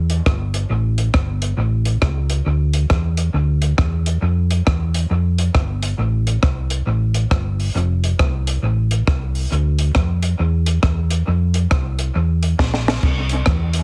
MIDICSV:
0, 0, Header, 1, 3, 480
1, 0, Start_track
1, 0, Tempo, 440529
1, 767, Time_signature, 4, 2, 24, 8
1, 15070, End_track
2, 0, Start_track
2, 0, Title_t, "Fingered electric bass"
2, 0, Program_c, 0, 33
2, 0, Note_on_c, 0, 40, 88
2, 211, Note_off_c, 0, 40, 0
2, 285, Note_on_c, 0, 31, 93
2, 694, Note_off_c, 0, 31, 0
2, 760, Note_on_c, 0, 33, 97
2, 1171, Note_off_c, 0, 33, 0
2, 1243, Note_on_c, 0, 31, 88
2, 1653, Note_off_c, 0, 31, 0
2, 1712, Note_on_c, 0, 33, 93
2, 2126, Note_off_c, 0, 33, 0
2, 2200, Note_on_c, 0, 37, 85
2, 2611, Note_off_c, 0, 37, 0
2, 2681, Note_on_c, 0, 38, 104
2, 3091, Note_off_c, 0, 38, 0
2, 3168, Note_on_c, 0, 40, 82
2, 3575, Note_off_c, 0, 40, 0
2, 3637, Note_on_c, 0, 38, 95
2, 4049, Note_off_c, 0, 38, 0
2, 4126, Note_on_c, 0, 40, 85
2, 4534, Note_off_c, 0, 40, 0
2, 4599, Note_on_c, 0, 41, 104
2, 5010, Note_off_c, 0, 41, 0
2, 5090, Note_on_c, 0, 40, 83
2, 5496, Note_off_c, 0, 40, 0
2, 5563, Note_on_c, 0, 41, 87
2, 5972, Note_off_c, 0, 41, 0
2, 6045, Note_on_c, 0, 31, 88
2, 6453, Note_off_c, 0, 31, 0
2, 6517, Note_on_c, 0, 33, 98
2, 6929, Note_off_c, 0, 33, 0
2, 7009, Note_on_c, 0, 36, 69
2, 7415, Note_off_c, 0, 36, 0
2, 7481, Note_on_c, 0, 33, 84
2, 7891, Note_off_c, 0, 33, 0
2, 7966, Note_on_c, 0, 31, 100
2, 8374, Note_off_c, 0, 31, 0
2, 8444, Note_on_c, 0, 29, 107
2, 8853, Note_off_c, 0, 29, 0
2, 8929, Note_on_c, 0, 36, 91
2, 9336, Note_off_c, 0, 36, 0
2, 9399, Note_on_c, 0, 33, 81
2, 9810, Note_off_c, 0, 33, 0
2, 9889, Note_on_c, 0, 36, 93
2, 10296, Note_off_c, 0, 36, 0
2, 10370, Note_on_c, 0, 38, 106
2, 10776, Note_off_c, 0, 38, 0
2, 10846, Note_on_c, 0, 41, 86
2, 11253, Note_off_c, 0, 41, 0
2, 11328, Note_on_c, 0, 40, 89
2, 11734, Note_off_c, 0, 40, 0
2, 11804, Note_on_c, 0, 40, 89
2, 12212, Note_off_c, 0, 40, 0
2, 12287, Note_on_c, 0, 41, 105
2, 12694, Note_off_c, 0, 41, 0
2, 12765, Note_on_c, 0, 36, 83
2, 13172, Note_off_c, 0, 36, 0
2, 13243, Note_on_c, 0, 40, 92
2, 13651, Note_off_c, 0, 40, 0
2, 13717, Note_on_c, 0, 34, 86
2, 14127, Note_off_c, 0, 34, 0
2, 14196, Note_on_c, 0, 36, 110
2, 14606, Note_off_c, 0, 36, 0
2, 14677, Note_on_c, 0, 40, 84
2, 15070, Note_off_c, 0, 40, 0
2, 15070, End_track
3, 0, Start_track
3, 0, Title_t, "Drums"
3, 106, Note_on_c, 9, 42, 80
3, 215, Note_off_c, 9, 42, 0
3, 286, Note_on_c, 9, 37, 100
3, 287, Note_on_c, 9, 36, 108
3, 395, Note_off_c, 9, 37, 0
3, 396, Note_off_c, 9, 36, 0
3, 589, Note_on_c, 9, 42, 98
3, 698, Note_off_c, 9, 42, 0
3, 1067, Note_on_c, 9, 42, 78
3, 1176, Note_off_c, 9, 42, 0
3, 1240, Note_on_c, 9, 37, 104
3, 1246, Note_on_c, 9, 36, 109
3, 1349, Note_off_c, 9, 37, 0
3, 1355, Note_off_c, 9, 36, 0
3, 1545, Note_on_c, 9, 42, 93
3, 1654, Note_off_c, 9, 42, 0
3, 2020, Note_on_c, 9, 42, 81
3, 2129, Note_off_c, 9, 42, 0
3, 2198, Note_on_c, 9, 37, 94
3, 2203, Note_on_c, 9, 36, 105
3, 2307, Note_off_c, 9, 37, 0
3, 2312, Note_off_c, 9, 36, 0
3, 2502, Note_on_c, 9, 42, 92
3, 2611, Note_off_c, 9, 42, 0
3, 2980, Note_on_c, 9, 42, 82
3, 3089, Note_off_c, 9, 42, 0
3, 3159, Note_on_c, 9, 37, 110
3, 3166, Note_on_c, 9, 36, 107
3, 3268, Note_off_c, 9, 37, 0
3, 3275, Note_off_c, 9, 36, 0
3, 3458, Note_on_c, 9, 42, 93
3, 3567, Note_off_c, 9, 42, 0
3, 3941, Note_on_c, 9, 42, 84
3, 4050, Note_off_c, 9, 42, 0
3, 4120, Note_on_c, 9, 37, 100
3, 4125, Note_on_c, 9, 36, 106
3, 4229, Note_off_c, 9, 37, 0
3, 4234, Note_off_c, 9, 36, 0
3, 4426, Note_on_c, 9, 42, 102
3, 4535, Note_off_c, 9, 42, 0
3, 4909, Note_on_c, 9, 42, 75
3, 5018, Note_off_c, 9, 42, 0
3, 5085, Note_on_c, 9, 37, 112
3, 5091, Note_on_c, 9, 36, 115
3, 5194, Note_off_c, 9, 37, 0
3, 5200, Note_off_c, 9, 36, 0
3, 5387, Note_on_c, 9, 42, 88
3, 5496, Note_off_c, 9, 42, 0
3, 5867, Note_on_c, 9, 42, 82
3, 5976, Note_off_c, 9, 42, 0
3, 6042, Note_on_c, 9, 37, 103
3, 6046, Note_on_c, 9, 36, 109
3, 6151, Note_off_c, 9, 37, 0
3, 6155, Note_off_c, 9, 36, 0
3, 6347, Note_on_c, 9, 42, 96
3, 6456, Note_off_c, 9, 42, 0
3, 6830, Note_on_c, 9, 42, 77
3, 6939, Note_off_c, 9, 42, 0
3, 7002, Note_on_c, 9, 37, 102
3, 7008, Note_on_c, 9, 36, 113
3, 7111, Note_off_c, 9, 37, 0
3, 7117, Note_off_c, 9, 36, 0
3, 7303, Note_on_c, 9, 42, 93
3, 7412, Note_off_c, 9, 42, 0
3, 7784, Note_on_c, 9, 42, 85
3, 7893, Note_off_c, 9, 42, 0
3, 7966, Note_on_c, 9, 37, 100
3, 7967, Note_on_c, 9, 36, 107
3, 8075, Note_off_c, 9, 37, 0
3, 8076, Note_off_c, 9, 36, 0
3, 8277, Note_on_c, 9, 46, 55
3, 8386, Note_off_c, 9, 46, 0
3, 8458, Note_on_c, 9, 44, 59
3, 8567, Note_off_c, 9, 44, 0
3, 8757, Note_on_c, 9, 42, 78
3, 8866, Note_off_c, 9, 42, 0
3, 8928, Note_on_c, 9, 37, 110
3, 8932, Note_on_c, 9, 36, 107
3, 9037, Note_off_c, 9, 37, 0
3, 9041, Note_off_c, 9, 36, 0
3, 9232, Note_on_c, 9, 42, 95
3, 9341, Note_off_c, 9, 42, 0
3, 9708, Note_on_c, 9, 42, 81
3, 9817, Note_off_c, 9, 42, 0
3, 9888, Note_on_c, 9, 37, 106
3, 9889, Note_on_c, 9, 36, 113
3, 9997, Note_off_c, 9, 37, 0
3, 9998, Note_off_c, 9, 36, 0
3, 10189, Note_on_c, 9, 46, 54
3, 10297, Note_off_c, 9, 46, 0
3, 10370, Note_on_c, 9, 44, 64
3, 10479, Note_off_c, 9, 44, 0
3, 10662, Note_on_c, 9, 42, 78
3, 10771, Note_off_c, 9, 42, 0
3, 10839, Note_on_c, 9, 37, 110
3, 10849, Note_on_c, 9, 36, 106
3, 10948, Note_off_c, 9, 37, 0
3, 10958, Note_off_c, 9, 36, 0
3, 11142, Note_on_c, 9, 42, 89
3, 11251, Note_off_c, 9, 42, 0
3, 11619, Note_on_c, 9, 42, 90
3, 11728, Note_off_c, 9, 42, 0
3, 11798, Note_on_c, 9, 37, 100
3, 11805, Note_on_c, 9, 36, 110
3, 11907, Note_off_c, 9, 37, 0
3, 11914, Note_off_c, 9, 36, 0
3, 12100, Note_on_c, 9, 42, 100
3, 12209, Note_off_c, 9, 42, 0
3, 12575, Note_on_c, 9, 42, 82
3, 12684, Note_off_c, 9, 42, 0
3, 12758, Note_on_c, 9, 37, 110
3, 12766, Note_on_c, 9, 36, 111
3, 12867, Note_off_c, 9, 37, 0
3, 12875, Note_off_c, 9, 36, 0
3, 13060, Note_on_c, 9, 42, 89
3, 13169, Note_off_c, 9, 42, 0
3, 13540, Note_on_c, 9, 42, 88
3, 13649, Note_off_c, 9, 42, 0
3, 13720, Note_on_c, 9, 36, 111
3, 13720, Note_on_c, 9, 38, 59
3, 13829, Note_off_c, 9, 36, 0
3, 13829, Note_off_c, 9, 38, 0
3, 13878, Note_on_c, 9, 38, 65
3, 13987, Note_off_c, 9, 38, 0
3, 14036, Note_on_c, 9, 38, 103
3, 14145, Note_off_c, 9, 38, 0
3, 14195, Note_on_c, 9, 49, 84
3, 14197, Note_on_c, 9, 36, 106
3, 14304, Note_off_c, 9, 49, 0
3, 14306, Note_off_c, 9, 36, 0
3, 14485, Note_on_c, 9, 42, 79
3, 14594, Note_off_c, 9, 42, 0
3, 14663, Note_on_c, 9, 37, 117
3, 14678, Note_on_c, 9, 36, 119
3, 14772, Note_off_c, 9, 37, 0
3, 14787, Note_off_c, 9, 36, 0
3, 14965, Note_on_c, 9, 42, 96
3, 15070, Note_off_c, 9, 42, 0
3, 15070, End_track
0, 0, End_of_file